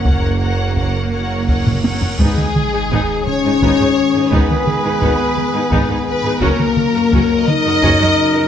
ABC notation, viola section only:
X:1
M:6/8
L:1/16
Q:3/8=57
K:G#m
V:1 name="Viola section"
[Ac]2 [Ac]2 [Ac]2 [Ac]2 [Ac]2 [Ac]2 | [B,D] z2 [DG] [B,D] z2 [DG] [B,D] [DG] z [DG] | [B,D] z2 [DG] [B,D] z2 [DG] [B,D] [DG] z [DG] | [CF] z2 [FA] [CF] z2 [FA] [CF] [FA] z [FA] |]